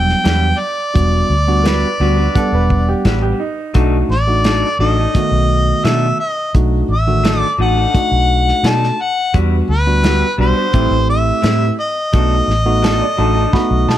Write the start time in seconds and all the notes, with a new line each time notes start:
Already playing: E1 F#3 G3 B3 D4 G5
0.09 snare
0.24 E2 G3 D4 F#4 B4, snare, closed hi-hat
0.59 D5
0.94 E1 G3 B3 D4 F#4, kick, closed hi-hat
1.30 D2
1.47 G3 B3 D4 F#4
1.63 G3 D4 F#4 A#4 B4, snare, closed hi-hat
1.67 B4
2.00 D2 G3 B3 D4 F#4 B4
2.17 D4 F#4 B4
2.35 G3 B3 D4 A4 F#5, kick, closed hi-hat
2.52 E1 B4
2.70 kick
2.89 G4
3.05 A1 G3 D4 F#4 B4, kick, snare, closed hi-hat
3.22 G4
3.40 D#4
3.74 B1 F#3 A3 D4 D#4 F#4 A4, kick, closed hi-hat
4.09 A1 D5, snare
4.27 A3 D4 D#4 F#4
4.44 F#3 D4 D#4 A4, snare, closed hi-hat
4.79 A1 F#3 A3 D4 D#4 F#4 D#5
4.83 A4
4.98 D4 D#4 A4
5.15 D#3 A3 B3 F#4, kick, closed hi-hat
5.32 B1
5.84 B2 F#3 D4 D#4 A4 E5, snare, closed hi-hat
6.20 D#5
6.54 B1 A3 D4 D#4 F#4, kick, closed hi-hat
6.89 A1 E5
7.07 D#3 A3 D4 F#4
7.24 F#3 D4 D#4 A4, snare, closed hi-hat
7.40 D5
7.58 A1 F#3 A3 D4 D#4 F#4 A4 F#5
7.76 D4 D#4 A4
7.94 A3 D4 D#4 F#4, kick, closed hi-hat
8.12 B1
8.48 snare
8.63 B2 F#3 D4 D#4 A4 A5, snare, closed hi-hat
8.83 snare
9.01 F#5
9.34 E2 G3 B3 D4 F#4 B4, kick, closed hi-hat
9.69 D2 B4
9.87 G3 B3 D4 F#4
10.03 G3 D4 F#4 B4, snare, closed hi-hat
10.38 B1 G3 B3 D4 F#4 B4 C5
10.56 D4 F#4 B4
10.73 A1 G3 A3 C4 E4 G4 B4, kick, closed hi-hat
10.91 A1
11.10 E5
11.42 A2 G3 C4 E4 B4, snare, closed hi-hat
11.80 D#5
12.13 B1 F#3 A3 B3 D4 D#4 F#4 A4, kick, closed hi-hat
12.48 A1, snare
12.66 A3 B3 D#4 F#4
12.83 F#3 D4 D#4 A4, snare, closed hi-hat
13.02 D5
13.17 A1 F#3 A3 D4 D#4 F#4 A4 A5
13.35 D4 D#4 A4
13.53 A3 B3 D#4 F#4 B5, kick, snare
13.71 B1
13.88 B2 A5, snare